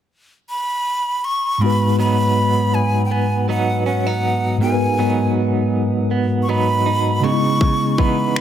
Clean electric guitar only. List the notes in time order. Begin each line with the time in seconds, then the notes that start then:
1.61 G#2
1.99 F#3 B3 D#4
3.11 B3
3.49 F#3 B3 D#4
3.86 C#4
4.07 D#4
4.61 G#2
4.99 F#3 B3 D#4
6.11 B3
6.49 F#3 B3 D#4
6.86 D#4
7.24 C#3
7.61 C#3
7.99 E3 B3 D#4